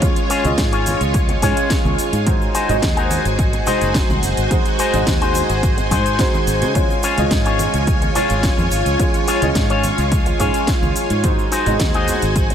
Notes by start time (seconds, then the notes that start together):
Already playing: F4 C#5 G#5
0.02 G#3 C#4 F4 C#5, kick, closed hi-hat, high conga, cabasa, shaker
0.16 closed hi-hat, shaker
0.30 C#4 F4 G#4 C#5, open hi-hat, cabasa, shaker
0.44 C#2 G#3 C#4 F4 D#5, closed hi-hat, high conga, low conga, cabasa, shaker
0.58 G#2, kick, snare, closed hi-hat, cabasa, shaker
0.72 C#4 F4 G#4 C#5, closed hi-hat, shaker
0.86 open hi-hat, high conga, cabasa, shaker
1.01 C#2, closed hi-hat, cabasa, shaker
1.14 kick, closed hi-hat, cabasa, shaker
1.29 muted clean electric guitar stroke, closed hi-hat, high conga, shaker
1.41 G#2 G#3 C#4 F4 G#4 C#5 G#5, kick, open hi-hat, low conga, cabasa, shaker
1.57 closed hi-hat, cabasa, shaker
1.70 C#5, kick, snare, closed hi-hat, cabasa, shaker
1.85 C#2, high conga, shaker
1.98 muted clean electric guitar stroke, muted fingered electric bass stroke, open hi-hat, cabasa, shaker
2.13 G#2, closed hi-hat, cabasa, shaker
2.26 G#3 D#4 F#4 C5, kick, closed hi-hat, high conga, cabasa, shaker
2.42 shaker
2.54 D#4 F#4 G#4 C5, open hi-hat, cabasa, shaker
2.68 G#1 G#3 D#4 F#4 D#5, closed hi-hat, high conga, low conga, cabasa, shaker
2.82 D#2, kick, snare, closed hi-hat, cabasa, shaker
2.97 D#4 F#4 G#4 A#4, closed hi-hat, shaker
3.11 open hi-hat, high conga, cabasa, shaker
3.25 G#1, closed hi-hat, cabasa, shaker
3.39 kick, closed hi-hat, cabasa, shaker
3.53 muted clean electric guitar stroke, closed hi-hat, high conga, shaker
3.66 G#3 D#4 F#4 G#4 C5, open hi-hat, low conga, cabasa, shaker
3.81 F#1, closed hi-hat, cabasa, shaker
3.94 kick, snare, closed hi-hat, cabasa, shaker
4.09 C2, high conga, shaker
4.23 F#1, muted clean electric guitar stroke, open hi-hat, cabasa, shaker
4.37 G#1, closed hi-hat, cabasa, shaker
4.51 G#3 D#4 F#4 C5, kick, closed hi-hat, high conga, cabasa, shaker
4.65 closed hi-hat, shaker
4.79 D#4 F#4 G#4 C5, open hi-hat, cabasa, shaker
4.93 G#1 G#3 D#4 F#4 D#5, closed hi-hat, high conga, low conga, cabasa, shaker
5.07 D#2, kick, snare, closed hi-hat, cabasa, shaker
5.21 D#4 F#4 G#4 C5, closed hi-hat, shaker
5.35 open hi-hat, high conga, cabasa, shaker
5.49 G#1, closed hi-hat, cabasa, shaker
5.63 kick, closed hi-hat, cabasa, shaker
5.77 muted clean electric guitar stroke, closed hi-hat, high conga, shaker
5.91 G#2 D#4 F#4 G#4 C5, kick, open hi-hat, low conga, cabasa, shaker
6.06 closed hi-hat, cabasa, shaker
6.19 G#3 D#4 F#4 C5, kick, snare, closed hi-hat, cabasa, shaker
6.34 high conga, shaker
6.47 G#1, muted clean electric guitar stroke, open hi-hat, cabasa, shaker
6.62 C#3, closed hi-hat, cabasa, shaker
6.75 G#3 C#4 F4 C#5, kick, closed hi-hat, high conga, cabasa, shaker
6.90 shaker
7.03 C#4 F4 G#4 C#5, open hi-hat, cabasa, shaker
7.17 C#2 G#3 C#4 F4 D#5, closed hi-hat, high conga, low conga, cabasa, shaker
7.31 G#2, kick, snare, closed hi-hat, cabasa, shaker
7.46 C#4 F4 G#4 C#5, closed hi-hat, shaker
7.59 open hi-hat, high conga, cabasa, shaker
7.74 C#2, closed hi-hat, cabasa, shaker
7.87 kick, closed hi-hat, cabasa, shaker
8.02 muted clean electric guitar stroke, closed hi-hat, high conga, shaker
8.14 G#3 C#4 F4 G#4 C#5, open hi-hat, low conga, cabasa, shaker
8.29 G#1, closed hi-hat, cabasa, shaker
8.43 kick, snare, closed hi-hat, cabasa, shaker
8.58 F2, high conga, shaker
8.71 G#1, muted clean electric guitar stroke, open hi-hat, cabasa, shaker
8.86 C#2, closed hi-hat, cabasa, shaker
8.99 G#3 C#4 F4 C#5, kick, closed hi-hat, high conga, cabasa, shaker
9.14 closed hi-hat, shaker
9.27 C#4 F4 G#4 C#5, open hi-hat, cabasa, shaker
9.41 C#2 G#3 C#4 F4 D#5, closed hi-hat, high conga, low conga, cabasa, shaker
9.55 G#2, kick, snare, closed hi-hat, cabasa, shaker
9.70 C#4 F4 G#4 C#5, closed hi-hat, shaker
9.83 open hi-hat, high conga, cabasa, shaker
9.98 C#2, closed hi-hat, cabasa, shaker
10.12 kick, closed hi-hat, cabasa, shaker
10.26 muted clean electric guitar stroke, closed hi-hat, high conga, shaker
10.39 G#2 G#3 C#4 F4 G#4 C#5, kick, open hi-hat, low conga, cabasa, shaker
10.54 closed hi-hat, cabasa, shaker
10.67 kick, snare, closed hi-hat, cabasa, shaker
10.82 C#2, high conga, shaker
10.96 muted clean electric guitar stroke, open hi-hat, cabasa, shaker
11.10 G#2, closed hi-hat, cabasa, shaker
11.23 G#3 D#4 F#4 C5 G#5, kick, closed hi-hat, high conga, cabasa, shaker
11.39 shaker
11.51 D#4 F#4 G#4 C5, open hi-hat, cabasa, shaker
11.65 G#1 G#3 D#4 F#4 D#5, closed hi-hat, high conga, low conga, cabasa, shaker
11.79 D#2, kick, snare, closed hi-hat, cabasa, shaker
11.94 D#4 F#4 G#4 D#5, closed hi-hat, shaker
12.08 open hi-hat, high conga, cabasa, shaker
12.22 G#1, closed hi-hat, cabasa, shaker
12.36 kick, closed hi-hat, cabasa, shaker
12.50 muted clean electric guitar stroke, closed hi-hat, high conga, shaker